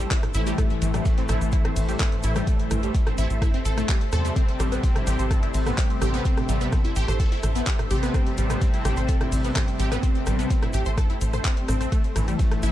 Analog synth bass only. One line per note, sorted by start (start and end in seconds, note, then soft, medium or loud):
0.35 0.54 A1 loud
0.82 1.01 A1 loud
1.29 1.39 A1 loud
1.41 1.60 A1 medium
1.76 1.96 A1 medium
2.24 2.43 A1 medium
2.71 2.90 A1 loud
3.18 3.28 A1 loud
3.30 3.49 A1 medium
3.65 3.85 A1 medium
4.13 4.32 E2 medium
4.60 4.79 A1 loud
5.07 5.17 A1 loud
5.19 5.38 A1 medium
5.54 5.74 A1 medium
6.01 6.21 A1 loud
6.49 6.68 A1 loud
6.96 7.06 A1 loud
7.08 7.27 A1 medium
7.43 7.63 A1 loud
7.90 8.10 A1 loud
8.38 8.57 A1 loud
8.85 8.95 A1 loud
8.97 9.16 A1 medium
9.32 9.51 A1 medium
9.80 9.99 A1 loud
10.27 10.46 A1 loud
10.74 10.84 A1 loud
10.86 11.05 A1 medium
11.21 11.41 A1 loud
11.69 11.88 A1 loud
12.16 12.35 A1 loud
12.63 12.72 A1 loud